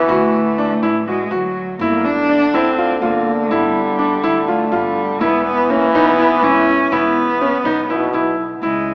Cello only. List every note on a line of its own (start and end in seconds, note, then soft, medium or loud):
0.11 1.03 A3 medium
1.08 1.33 G#3 medium
1.32 1.79 F#3 medium
1.80 2.06 A#3 medium
2.04 2.56 D4 medium
2.54 3.01 C4 medium
3.02 3.52 A#3 medium
3.51 4.50 G3 medium
4.48 4.76 A3 medium
4.75 5.23 G3 medium
5.21 5.45 B3 medium
5.46 5.72 B3 medium
5.70 5.94 A#3 medium
5.95 6.45 B3 medium
6.43 6.94 C#4 medium
6.92 8.14 B3 medium
8.62 8.94 G#3 medium